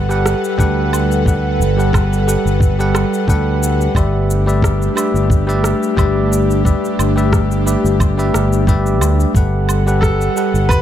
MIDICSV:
0, 0, Header, 1, 6, 480
1, 0, Start_track
1, 0, Key_signature, 1, "major"
1, 0, Tempo, 674157
1, 901, Time_signature, 4, 2, 24, 8
1, 7703, End_track
2, 0, Start_track
2, 0, Title_t, "Grand piano"
2, 0, Program_c, 0, 0
2, 7126, Note_on_c, 0, 69, 86
2, 7585, Note_off_c, 0, 69, 0
2, 7610, Note_on_c, 0, 71, 107
2, 7703, Note_off_c, 0, 71, 0
2, 7703, End_track
3, 0, Start_track
3, 0, Title_t, "Tine electric piano"
3, 0, Program_c, 1, 4
3, 62, Note_on_c, 1, 55, 81
3, 66, Note_on_c, 1, 67, 74
3, 69, Note_on_c, 1, 69, 75
3, 75, Note_on_c, 1, 71, 77
3, 79, Note_on_c, 1, 78, 87
3, 391, Note_off_c, 1, 55, 0
3, 392, Note_off_c, 1, 67, 0
3, 394, Note_off_c, 1, 69, 0
3, 397, Note_off_c, 1, 71, 0
3, 399, Note_off_c, 1, 78, 0
3, 410, Note_on_c, 1, 55, 88
3, 413, Note_on_c, 1, 67, 76
3, 419, Note_on_c, 1, 69, 79
3, 421, Note_on_c, 1, 71, 79
3, 424, Note_on_c, 1, 78, 100
3, 869, Note_off_c, 1, 55, 0
3, 870, Note_off_c, 1, 67, 0
3, 873, Note_off_c, 1, 69, 0
3, 874, Note_off_c, 1, 71, 0
3, 875, Note_off_c, 1, 78, 0
3, 892, Note_on_c, 1, 55, 67
3, 901, Note_on_c, 1, 67, 61
3, 903, Note_on_c, 1, 69, 62
3, 904, Note_on_c, 1, 71, 64
3, 912, Note_on_c, 1, 78, 77
3, 1234, Note_off_c, 1, 55, 0
3, 1238, Note_off_c, 1, 67, 0
3, 1239, Note_off_c, 1, 69, 0
3, 1239, Note_off_c, 1, 71, 0
3, 1243, Note_off_c, 1, 78, 0
3, 1260, Note_on_c, 1, 55, 76
3, 1266, Note_on_c, 1, 67, 66
3, 1271, Note_on_c, 1, 69, 71
3, 1273, Note_on_c, 1, 71, 70
3, 1277, Note_on_c, 1, 78, 82
3, 1589, Note_off_c, 1, 55, 0
3, 1593, Note_off_c, 1, 67, 0
3, 1595, Note_off_c, 1, 69, 0
3, 1596, Note_off_c, 1, 71, 0
3, 1598, Note_off_c, 1, 78, 0
3, 1614, Note_on_c, 1, 55, 68
3, 1619, Note_on_c, 1, 67, 60
3, 1621, Note_on_c, 1, 69, 64
3, 1623, Note_on_c, 1, 71, 65
3, 1628, Note_on_c, 1, 78, 75
3, 1954, Note_off_c, 1, 55, 0
3, 1957, Note_off_c, 1, 67, 0
3, 1958, Note_off_c, 1, 69, 0
3, 1959, Note_off_c, 1, 71, 0
3, 1962, Note_off_c, 1, 78, 0
3, 1986, Note_on_c, 1, 55, 87
3, 1987, Note_on_c, 1, 67, 74
3, 1991, Note_on_c, 1, 69, 75
3, 1996, Note_on_c, 1, 71, 78
3, 1998, Note_on_c, 1, 78, 95
3, 2313, Note_off_c, 1, 55, 0
3, 2313, Note_off_c, 1, 67, 0
3, 2315, Note_off_c, 1, 69, 0
3, 2318, Note_off_c, 1, 71, 0
3, 2319, Note_off_c, 1, 78, 0
3, 2332, Note_on_c, 1, 55, 86
3, 2337, Note_on_c, 1, 67, 77
3, 2341, Note_on_c, 1, 69, 79
3, 2344, Note_on_c, 1, 71, 78
3, 2348, Note_on_c, 1, 78, 92
3, 2789, Note_off_c, 1, 55, 0
3, 2792, Note_off_c, 1, 67, 0
3, 2794, Note_off_c, 1, 69, 0
3, 2795, Note_off_c, 1, 71, 0
3, 2797, Note_off_c, 1, 78, 0
3, 2814, Note_on_c, 1, 55, 73
3, 2816, Note_on_c, 1, 67, 61
3, 2820, Note_on_c, 1, 71, 66
3, 2823, Note_on_c, 1, 74, 65
3, 2828, Note_on_c, 1, 76, 79
3, 3154, Note_off_c, 1, 55, 0
3, 3155, Note_off_c, 1, 67, 0
3, 3157, Note_off_c, 1, 71, 0
3, 3159, Note_off_c, 1, 74, 0
3, 3161, Note_off_c, 1, 76, 0
3, 3175, Note_on_c, 1, 55, 77
3, 3179, Note_on_c, 1, 67, 67
3, 3185, Note_on_c, 1, 71, 68
3, 3185, Note_on_c, 1, 74, 71
3, 3191, Note_on_c, 1, 76, 83
3, 3507, Note_off_c, 1, 55, 0
3, 3509, Note_off_c, 1, 67, 0
3, 3512, Note_off_c, 1, 71, 0
3, 3512, Note_off_c, 1, 74, 0
3, 3515, Note_off_c, 1, 76, 0
3, 3528, Note_on_c, 1, 55, 69
3, 3528, Note_on_c, 1, 67, 63
3, 3535, Note_on_c, 1, 71, 64
3, 3539, Note_on_c, 1, 74, 61
3, 3543, Note_on_c, 1, 76, 80
3, 3871, Note_off_c, 1, 55, 0
3, 3872, Note_off_c, 1, 67, 0
3, 3875, Note_off_c, 1, 71, 0
3, 3877, Note_off_c, 1, 74, 0
3, 3879, Note_off_c, 1, 76, 0
3, 3894, Note_on_c, 1, 55, 84
3, 3896, Note_on_c, 1, 67, 74
3, 3898, Note_on_c, 1, 71, 77
3, 3906, Note_on_c, 1, 74, 77
3, 3908, Note_on_c, 1, 76, 92
3, 4227, Note_off_c, 1, 55, 0
3, 4228, Note_off_c, 1, 67, 0
3, 4229, Note_off_c, 1, 71, 0
3, 4233, Note_off_c, 1, 74, 0
3, 4234, Note_off_c, 1, 76, 0
3, 4246, Note_on_c, 1, 55, 82
3, 4250, Note_on_c, 1, 67, 76
3, 4254, Note_on_c, 1, 71, 80
3, 4260, Note_on_c, 1, 74, 81
3, 4263, Note_on_c, 1, 76, 100
3, 4706, Note_off_c, 1, 55, 0
3, 4708, Note_off_c, 1, 67, 0
3, 4710, Note_off_c, 1, 71, 0
3, 4713, Note_off_c, 1, 74, 0
3, 4715, Note_off_c, 1, 76, 0
3, 4727, Note_on_c, 1, 55, 68
3, 4734, Note_on_c, 1, 67, 64
3, 4736, Note_on_c, 1, 71, 70
3, 4738, Note_on_c, 1, 74, 63
3, 4743, Note_on_c, 1, 76, 79
3, 5071, Note_off_c, 1, 55, 0
3, 5074, Note_off_c, 1, 67, 0
3, 5075, Note_off_c, 1, 71, 0
3, 5076, Note_off_c, 1, 74, 0
3, 5079, Note_off_c, 1, 76, 0
3, 5095, Note_on_c, 1, 55, 78
3, 5096, Note_on_c, 1, 67, 72
3, 5104, Note_on_c, 1, 71, 71
3, 5108, Note_on_c, 1, 74, 71
3, 5109, Note_on_c, 1, 76, 87
3, 5427, Note_off_c, 1, 55, 0
3, 5427, Note_off_c, 1, 67, 0
3, 5432, Note_off_c, 1, 71, 0
3, 5434, Note_off_c, 1, 74, 0
3, 5434, Note_off_c, 1, 76, 0
3, 5452, Note_on_c, 1, 55, 68
3, 5455, Note_on_c, 1, 67, 61
3, 5457, Note_on_c, 1, 71, 66
3, 5463, Note_on_c, 1, 76, 75
3, 5464, Note_on_c, 1, 74, 61
3, 5793, Note_off_c, 1, 55, 0
3, 5795, Note_off_c, 1, 67, 0
3, 5796, Note_off_c, 1, 71, 0
3, 5799, Note_off_c, 1, 74, 0
3, 5799, Note_off_c, 1, 76, 0
3, 5819, Note_on_c, 1, 55, 87
3, 5823, Note_on_c, 1, 67, 73
3, 5828, Note_on_c, 1, 71, 74
3, 5831, Note_on_c, 1, 74, 73
3, 5833, Note_on_c, 1, 76, 90
3, 6149, Note_off_c, 1, 55, 0
3, 6151, Note_off_c, 1, 67, 0
3, 6154, Note_off_c, 1, 71, 0
3, 6155, Note_off_c, 1, 74, 0
3, 6156, Note_off_c, 1, 76, 0
3, 6175, Note_on_c, 1, 55, 86
3, 6177, Note_on_c, 1, 67, 85
3, 6182, Note_on_c, 1, 71, 82
3, 6186, Note_on_c, 1, 74, 79
3, 6188, Note_on_c, 1, 76, 97
3, 6631, Note_off_c, 1, 55, 0
3, 6632, Note_off_c, 1, 67, 0
3, 6634, Note_off_c, 1, 71, 0
3, 6636, Note_off_c, 1, 74, 0
3, 6638, Note_off_c, 1, 76, 0
3, 6658, Note_on_c, 1, 55, 69
3, 6662, Note_on_c, 1, 67, 61
3, 6666, Note_on_c, 1, 69, 65
3, 6668, Note_on_c, 1, 71, 67
3, 6671, Note_on_c, 1, 78, 77
3, 6996, Note_off_c, 1, 55, 0
3, 6998, Note_off_c, 1, 67, 0
3, 7000, Note_off_c, 1, 69, 0
3, 7001, Note_off_c, 1, 71, 0
3, 7003, Note_off_c, 1, 78, 0
3, 7020, Note_on_c, 1, 55, 73
3, 7026, Note_on_c, 1, 67, 74
3, 7030, Note_on_c, 1, 69, 69
3, 7033, Note_on_c, 1, 71, 69
3, 7034, Note_on_c, 1, 78, 82
3, 7350, Note_off_c, 1, 55, 0
3, 7352, Note_off_c, 1, 67, 0
3, 7355, Note_off_c, 1, 69, 0
3, 7356, Note_off_c, 1, 71, 0
3, 7356, Note_off_c, 1, 78, 0
3, 7375, Note_on_c, 1, 55, 64
3, 7380, Note_on_c, 1, 67, 60
3, 7384, Note_on_c, 1, 69, 66
3, 7388, Note_on_c, 1, 71, 63
3, 7390, Note_on_c, 1, 78, 80
3, 7703, Note_off_c, 1, 55, 0
3, 7703, Note_off_c, 1, 67, 0
3, 7703, Note_off_c, 1, 69, 0
3, 7703, Note_off_c, 1, 71, 0
3, 7703, Note_off_c, 1, 78, 0
3, 7703, End_track
4, 0, Start_track
4, 0, Title_t, "Analog synth pad"
4, 0, Program_c, 2, 89
4, 0, Note_on_c, 2, 55, 78
4, 0, Note_on_c, 2, 69, 72
4, 0, Note_on_c, 2, 71, 91
4, 0, Note_on_c, 2, 78, 72
4, 2792, Note_off_c, 2, 78, 0
4, 2793, Note_off_c, 2, 71, 0
4, 2794, Note_off_c, 2, 69, 0
4, 2795, Note_off_c, 2, 55, 0
4, 2811, Note_on_c, 2, 67, 93
4, 2813, Note_on_c, 2, 62, 75
4, 2814, Note_on_c, 2, 57, 78
4, 6627, Note_off_c, 2, 67, 0
4, 6628, Note_off_c, 2, 62, 0
4, 6629, Note_off_c, 2, 57, 0
4, 6660, Note_on_c, 2, 78, 76
4, 6661, Note_on_c, 2, 69, 71
4, 6662, Note_on_c, 2, 55, 81
4, 6664, Note_on_c, 2, 71, 86
4, 7703, Note_off_c, 2, 55, 0
4, 7703, Note_off_c, 2, 69, 0
4, 7703, Note_off_c, 2, 71, 0
4, 7703, Note_off_c, 2, 78, 0
4, 7703, End_track
5, 0, Start_track
5, 0, Title_t, "Fingered electric bass"
5, 0, Program_c, 3, 33
5, 0, Note_on_c, 3, 31, 75
5, 236, Note_off_c, 3, 31, 0
5, 416, Note_on_c, 3, 38, 80
5, 1139, Note_on_c, 3, 31, 79
5, 1150, Note_off_c, 3, 38, 0
5, 1677, Note_off_c, 3, 31, 0
5, 1747, Note_on_c, 3, 31, 80
5, 2158, Note_off_c, 3, 31, 0
5, 2334, Note_on_c, 3, 38, 80
5, 2756, Note_off_c, 3, 38, 0
5, 2809, Note_on_c, 3, 31, 85
5, 3473, Note_off_c, 3, 31, 0
5, 3659, Note_on_c, 3, 31, 77
5, 4074, Note_off_c, 3, 31, 0
5, 4252, Note_on_c, 3, 31, 78
5, 4794, Note_off_c, 3, 31, 0
5, 4977, Note_on_c, 3, 31, 72
5, 5517, Note_off_c, 3, 31, 0
5, 5584, Note_on_c, 3, 31, 81
5, 5938, Note_off_c, 3, 31, 0
5, 5942, Note_on_c, 3, 31, 78
5, 6418, Note_off_c, 3, 31, 0
5, 6418, Note_on_c, 3, 38, 94
5, 6583, Note_off_c, 3, 38, 0
5, 6655, Note_on_c, 3, 31, 81
5, 7316, Note_off_c, 3, 31, 0
5, 7504, Note_on_c, 3, 31, 76
5, 7703, Note_off_c, 3, 31, 0
5, 7703, End_track
6, 0, Start_track
6, 0, Title_t, "Drums"
6, 77, Note_on_c, 9, 82, 30
6, 148, Note_off_c, 9, 82, 0
6, 182, Note_on_c, 9, 37, 75
6, 188, Note_on_c, 9, 82, 76
6, 254, Note_off_c, 9, 37, 0
6, 260, Note_off_c, 9, 82, 0
6, 315, Note_on_c, 9, 82, 34
6, 386, Note_off_c, 9, 82, 0
6, 417, Note_on_c, 9, 36, 100
6, 430, Note_on_c, 9, 82, 43
6, 488, Note_off_c, 9, 36, 0
6, 501, Note_off_c, 9, 82, 0
6, 663, Note_on_c, 9, 77, 74
6, 669, Note_on_c, 9, 82, 74
6, 734, Note_off_c, 9, 77, 0
6, 740, Note_off_c, 9, 82, 0
6, 795, Note_on_c, 9, 82, 31
6, 866, Note_off_c, 9, 82, 0
6, 896, Note_on_c, 9, 36, 93
6, 910, Note_on_c, 9, 82, 39
6, 967, Note_off_c, 9, 36, 0
6, 981, Note_off_c, 9, 82, 0
6, 1151, Note_on_c, 9, 82, 71
6, 1222, Note_off_c, 9, 82, 0
6, 1281, Note_on_c, 9, 82, 28
6, 1352, Note_off_c, 9, 82, 0
6, 1375, Note_on_c, 9, 36, 94
6, 1382, Note_on_c, 9, 37, 68
6, 1382, Note_on_c, 9, 77, 74
6, 1388, Note_on_c, 9, 82, 40
6, 1447, Note_off_c, 9, 36, 0
6, 1453, Note_off_c, 9, 37, 0
6, 1453, Note_off_c, 9, 77, 0
6, 1459, Note_off_c, 9, 82, 0
6, 1517, Note_on_c, 9, 82, 30
6, 1588, Note_off_c, 9, 82, 0
6, 1629, Note_on_c, 9, 82, 73
6, 1700, Note_off_c, 9, 82, 0
6, 1758, Note_on_c, 9, 82, 30
6, 1829, Note_off_c, 9, 82, 0
6, 1854, Note_on_c, 9, 36, 91
6, 1867, Note_on_c, 9, 82, 38
6, 1925, Note_off_c, 9, 36, 0
6, 1938, Note_off_c, 9, 82, 0
6, 1994, Note_on_c, 9, 82, 28
6, 2065, Note_off_c, 9, 82, 0
6, 2098, Note_on_c, 9, 37, 74
6, 2098, Note_on_c, 9, 77, 82
6, 2104, Note_on_c, 9, 82, 72
6, 2169, Note_off_c, 9, 37, 0
6, 2169, Note_off_c, 9, 77, 0
6, 2175, Note_off_c, 9, 82, 0
6, 2234, Note_on_c, 9, 82, 34
6, 2305, Note_off_c, 9, 82, 0
6, 2334, Note_on_c, 9, 36, 96
6, 2346, Note_on_c, 9, 82, 42
6, 2405, Note_off_c, 9, 36, 0
6, 2417, Note_off_c, 9, 82, 0
6, 2586, Note_on_c, 9, 82, 74
6, 2657, Note_off_c, 9, 82, 0
6, 2713, Note_on_c, 9, 82, 32
6, 2784, Note_off_c, 9, 82, 0
6, 2811, Note_on_c, 9, 36, 89
6, 2820, Note_on_c, 9, 77, 68
6, 2826, Note_on_c, 9, 82, 36
6, 2883, Note_off_c, 9, 36, 0
6, 2891, Note_off_c, 9, 77, 0
6, 2897, Note_off_c, 9, 82, 0
6, 3065, Note_on_c, 9, 82, 69
6, 3137, Note_off_c, 9, 82, 0
6, 3195, Note_on_c, 9, 82, 29
6, 3266, Note_off_c, 9, 82, 0
6, 3292, Note_on_c, 9, 36, 89
6, 3304, Note_on_c, 9, 37, 69
6, 3310, Note_on_c, 9, 82, 40
6, 3363, Note_off_c, 9, 36, 0
6, 3375, Note_off_c, 9, 37, 0
6, 3381, Note_off_c, 9, 82, 0
6, 3434, Note_on_c, 9, 82, 28
6, 3505, Note_off_c, 9, 82, 0
6, 3538, Note_on_c, 9, 77, 79
6, 3544, Note_on_c, 9, 82, 74
6, 3609, Note_off_c, 9, 77, 0
6, 3615, Note_off_c, 9, 82, 0
6, 3673, Note_on_c, 9, 82, 30
6, 3744, Note_off_c, 9, 82, 0
6, 3772, Note_on_c, 9, 36, 97
6, 3784, Note_on_c, 9, 82, 39
6, 3843, Note_off_c, 9, 36, 0
6, 3855, Note_off_c, 9, 82, 0
6, 3912, Note_on_c, 9, 82, 27
6, 3983, Note_off_c, 9, 82, 0
6, 4016, Note_on_c, 9, 37, 77
6, 4022, Note_on_c, 9, 82, 76
6, 4087, Note_off_c, 9, 37, 0
6, 4093, Note_off_c, 9, 82, 0
6, 4151, Note_on_c, 9, 82, 33
6, 4222, Note_off_c, 9, 82, 0
6, 4253, Note_on_c, 9, 36, 97
6, 4258, Note_on_c, 9, 77, 83
6, 4264, Note_on_c, 9, 82, 44
6, 4324, Note_off_c, 9, 36, 0
6, 4330, Note_off_c, 9, 77, 0
6, 4336, Note_off_c, 9, 82, 0
6, 4505, Note_on_c, 9, 82, 69
6, 4576, Note_off_c, 9, 82, 0
6, 4633, Note_on_c, 9, 82, 31
6, 4704, Note_off_c, 9, 82, 0
6, 4734, Note_on_c, 9, 36, 89
6, 4746, Note_on_c, 9, 82, 39
6, 4806, Note_off_c, 9, 36, 0
6, 4817, Note_off_c, 9, 82, 0
6, 4877, Note_on_c, 9, 82, 28
6, 4948, Note_off_c, 9, 82, 0
6, 4978, Note_on_c, 9, 77, 76
6, 4984, Note_on_c, 9, 82, 70
6, 5050, Note_off_c, 9, 77, 0
6, 5055, Note_off_c, 9, 82, 0
6, 5111, Note_on_c, 9, 82, 28
6, 5182, Note_off_c, 9, 82, 0
6, 5215, Note_on_c, 9, 36, 93
6, 5217, Note_on_c, 9, 37, 73
6, 5223, Note_on_c, 9, 82, 40
6, 5286, Note_off_c, 9, 36, 0
6, 5288, Note_off_c, 9, 37, 0
6, 5294, Note_off_c, 9, 82, 0
6, 5350, Note_on_c, 9, 82, 28
6, 5421, Note_off_c, 9, 82, 0
6, 5464, Note_on_c, 9, 82, 73
6, 5536, Note_off_c, 9, 82, 0
6, 5593, Note_on_c, 9, 82, 30
6, 5664, Note_off_c, 9, 82, 0
6, 5695, Note_on_c, 9, 36, 91
6, 5697, Note_on_c, 9, 77, 75
6, 5703, Note_on_c, 9, 82, 40
6, 5766, Note_off_c, 9, 36, 0
6, 5768, Note_off_c, 9, 77, 0
6, 5774, Note_off_c, 9, 82, 0
6, 5833, Note_on_c, 9, 82, 29
6, 5905, Note_off_c, 9, 82, 0
6, 5940, Note_on_c, 9, 37, 75
6, 5946, Note_on_c, 9, 82, 74
6, 6012, Note_off_c, 9, 37, 0
6, 6018, Note_off_c, 9, 82, 0
6, 6072, Note_on_c, 9, 82, 32
6, 6143, Note_off_c, 9, 82, 0
6, 6174, Note_on_c, 9, 36, 94
6, 6184, Note_on_c, 9, 82, 43
6, 6245, Note_off_c, 9, 36, 0
6, 6255, Note_off_c, 9, 82, 0
6, 6311, Note_on_c, 9, 82, 27
6, 6382, Note_off_c, 9, 82, 0
6, 6418, Note_on_c, 9, 77, 75
6, 6424, Note_on_c, 9, 82, 73
6, 6489, Note_off_c, 9, 77, 0
6, 6495, Note_off_c, 9, 82, 0
6, 6551, Note_on_c, 9, 82, 30
6, 6622, Note_off_c, 9, 82, 0
6, 6654, Note_on_c, 9, 36, 91
6, 6663, Note_on_c, 9, 82, 40
6, 6725, Note_off_c, 9, 36, 0
6, 6734, Note_off_c, 9, 82, 0
6, 6897, Note_on_c, 9, 77, 75
6, 6903, Note_on_c, 9, 82, 73
6, 6968, Note_off_c, 9, 77, 0
6, 6974, Note_off_c, 9, 82, 0
6, 7032, Note_on_c, 9, 82, 31
6, 7104, Note_off_c, 9, 82, 0
6, 7134, Note_on_c, 9, 36, 92
6, 7140, Note_on_c, 9, 37, 78
6, 7146, Note_on_c, 9, 82, 41
6, 7205, Note_off_c, 9, 36, 0
6, 7211, Note_off_c, 9, 37, 0
6, 7217, Note_off_c, 9, 82, 0
6, 7271, Note_on_c, 9, 82, 30
6, 7342, Note_off_c, 9, 82, 0
6, 7383, Note_on_c, 9, 82, 77
6, 7454, Note_off_c, 9, 82, 0
6, 7512, Note_on_c, 9, 82, 32
6, 7583, Note_off_c, 9, 82, 0
6, 7614, Note_on_c, 9, 36, 97
6, 7620, Note_on_c, 9, 77, 76
6, 7626, Note_on_c, 9, 82, 42
6, 7685, Note_off_c, 9, 36, 0
6, 7692, Note_off_c, 9, 77, 0
6, 7698, Note_off_c, 9, 82, 0
6, 7703, End_track
0, 0, End_of_file